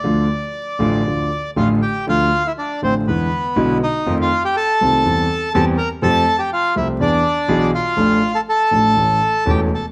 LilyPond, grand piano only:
\new Staff \with { instrumentName = "Grand piano" } { \clef bass \time 4/4 \key d \minor \tempo 4 = 121 <d, d f a f'>8 r4 <a,, a, d f a f'>8 <d, d f a f'>8 r8 <a,, a, d f a f'>8 r8 | <d, d f a f'>8 r4 <a,, a, d f a f'>8 <e, d e gis b e'>8 r8 <b,, b, d gis b e'>8 r8 | <f, ees f a c' f'>8 r4 <c, c ees a c' f'>8 <e, e g c' g'>8 r8 <e, e g c' g'>8 r8 | <f, f a c' g'>8 r4 <c, c f a c' g'>8 <e, e b d' gis'>8 r8 <b,, b, e b d' gis'>8 r8 |
<a,, a, f a d' a'>8 r4 <a,, a, f a d' a'>8 <a,, a, e a cis' a'>8 r8 <e,, e, e a cis' a'>8 r8 | }